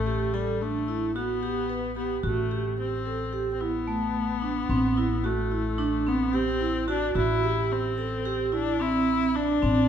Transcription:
Already playing: upright bass A1, viola A3
0.06 vibraphone G4
0.33 viola G3, vibraphone A4
0.61 viola A3, vibraphone D4
0.88 vibraphone E4
1.15 viola B3, vibraphone F#4
1.43 vibraphone G4
1.69 vibraphone B4
1.96 viola B3, vibraphone G4
2.24 upright bass A1, viola A3, vibraphone F#4
2.51 vibraphone G4
2.79 viola C4
3.05 vibraphone A4
3.33 vibraphone G4
3.53 viola C4
3.60 viola B3, vibraphone E4
3.87 vibraphone A3
4.42 vibraphone D4
4.69 upright bass A1, vibraphone C4
4.97 vibraphone E4
5.24 viola A3, vibraphone F#4
5.51 vibraphone E4
5.78 vibraphone D4
6.07 viola B3, vibraphone C4
6.33 viola C4, vibraphone G4
6.61 vibraphone E4
6.88 viola D4, vibraphone F#4
7.15 upright bass A1, viola E4, vibraphone F#4
7.43 vibraphone G4
7.72 viola C4
7.98 vibraphone A4
8.25 vibraphone G4
8.52 viola D4, vibraphone E4
8.80 vibraphone C4, viola E4
9.35 vibraphone D4, viola D4
9.62 upright bass A1, vibraphone C4

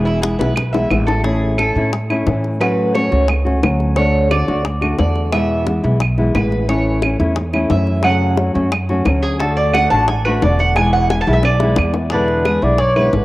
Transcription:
Already playing: upright bass E1, nylon-string guitar B2 E3 G#3 B3 E4
0.05 cuban tres E4, high bongo
0.22 nylon-string guitar E3 G#3 B3 E4, cuban tres G#4, high bongo
0.39 upright bass B1, nylon-string guitar E3 G#3 B3 E4, cuban tres B4, high bongo
0.56 muted nylon-string guitar stroke, high bongo, claves
0.73 nylon-string guitar E3 G#3 B3 E4, cuban tres E5, low bongo
0.90 upright bass A1, nylon-string guitar E3 G#3 B3 E4, low bongo, claves
1.07 cuban tres A4, low bongo
1.24 nylon-string guitar E3 A3 C#4 E4, cuban tres G#4, high bongo
1.58 nylon-string guitar E3 A3 C#4 E4, cuban tres A4, high bongo, claves
1.75 upright bass A2, nylon-string guitar A3 C#4 E4, high bongo
1.93 muted nylon-string guitar stroke, high bongo
2.10 nylon-string guitar A3 C#4 E4, high bongo, claves
2.27 upright bass A2, nylon-string guitar E3 A3 C#4 E4, high bongo, low bongo
2.44 high bongo
2.60 nylon-string guitar F#3 A3 C#4 F#4, cuban tres B4, high bongo, claves
2.94 nylon-string guitar F#3 A3 C#4 F#4, cuban tres C#5, high bongo
3.11 upright bass C#2, nylon-string guitar A3 C#4 F#4, high bongo
3.28 muted nylon-string guitar stroke, high bongo, claves
3.45 nylon-string guitar A3 C#4 F#4, high bongo
3.62 upright bass D2, nylon-string guitar F#3 A3 C#4 F#4, high bongo, low bongo, claves
3.80 high bongo
3.96 nylon-string guitar D3 A3 D4 F#4, cuban tres C#5, high bongo
4.31 nylon-string guitar D3 A3 D4 F#4, cuban tres D5, high bongo, claves
4.48 upright bass D2, nylon-string guitar A3 D4 F#4, high bongo
4.65 muted nylon-string guitar stroke, high bongo
4.81 nylon-string guitar A3 D4 F#4, high bongo, claves
4.98 upright bass E2, nylon-string guitar D3 A3 D4 F#4, cuban tres D5, high bongo, low bongo
5.16 high bongo
5.32 nylon-string guitar B2 E3 G#3 B3 E4, cuban tres E5, high bongo, claves
5.67 nylon-string guitar E3 G#3 B3 E4, high bongo
5.83 upright bass B1, nylon-string guitar E3 G#3 B3 E4, high bongo
6.00 muted nylon-string guitar stroke, high bongo, claves
6.18 nylon-string guitar E3 G#3 B3 E4, high bongo
6.35 upright bass A1, nylon-string guitar E3 G#3 B3 E4, cuban tres B4, high bongo, low bongo, claves
6.52 high bongo
6.68 nylon-string guitar E3 A3 C#4 E4, cuban tres C#5, high bongo
7.02 nylon-string guitar E3 A3 C#4 E4, high bongo, claves
7.19 upright bass E2, nylon-string guitar A3 C#4 E4, high bongo
7.36 muted nylon-string guitar stroke, high bongo
7.53 nylon-string guitar A3 C#4 E4, high bongo, claves
7.70 upright bass F#2, nylon-string guitar E3 A3 C#4 E4, cuban tres E5, high bongo, low bongo
7.87 high bongo
8.03 nylon-string guitar C#3 F#3 A3 C#4 F#4, cuban tres F#5, high bongo, claves
8.37 nylon-string guitar F#3 A3 C#4 F#4, high bongo
8.54 upright bass F#2, nylon-string guitar F#3 A3 C#4 F#4, high bongo
8.72 muted nylon-string guitar stroke, high bongo, claves
8.89 nylon-string guitar F#3 A3 C#4 F#4, high bongo
9.05 upright bass D2, nylon-string guitar F#3 A3 C#4 F#4, high bongo, low bongo, claves
9.23 cuban tres G#4, high bongo
9.39 nylon-string guitar D3 A3 D4 F#4, cuban tres A4, high bongo
9.57 cuban tres D5
9.74 nylon-string guitar D3 A3 D4 F#4, cuban tres F#5, high bongo, claves
9.90 upright bass A1, nylon-string guitar A3 D4 F#4, cuban tres A5, high bongo
10.08 cuban tres G#5, muted nylon-string guitar stroke, high bongo
10.25 nylon-string guitar A3 D4 F#4, cuban tres B4, high bongo, claves
10.42 upright bass E1, nylon-string guitar D3 A3 D4 F#4, cuban tres D5, high bongo, low bongo
10.59 cuban tres F#5, high bongo
10.76 nylon-string guitar B2 E3 G#3 B3 E4, cuban tres G#5, high bongo, claves
10.93 cuban tres F#5
11.10 nylon-string guitar E3 G#3 B3 E4, cuban tres G#5, high bongo
11.21 cuban tres A5
11.27 upright bass B1, nylon-string guitar E3 G#3 B3 E4, high bongo
11.33 cuban tres E5
11.43 cuban tres D5, muted nylon-string guitar stroke, high bongo, claves
11.60 nylon-string guitar E3 G#3 B3 E4, high bongo
11.76 upright bass E2, nylon-string guitar E3 G#3, low bongo, claves
11.80 nylon-string guitar B3 E4
11.94 low bongo
12.10 nylon-string guitar B2 D3 G#3 B3 E4, cuban tres D4, muted trumpet B4, high bongo
12.28 high bongo
12.45 nylon-string guitar D3 G#3 B3 E4, cuban tres G#4, high bongo, claves
12.62 upright bass B1, nylon-string guitar D3 G#3 B3 E4, muted trumpet D5, high bongo
12.78 muted trumpet C#5, cuban tres D5, muted nylon-string guitar stroke, high bongo
12.96 nylon-string guitar D3 G#3 B3 E4, cuban tres B4, claves
13.13 upright bass A1, nylon-string guitar D3 G#3 B3 E4, high bongo, low bongo

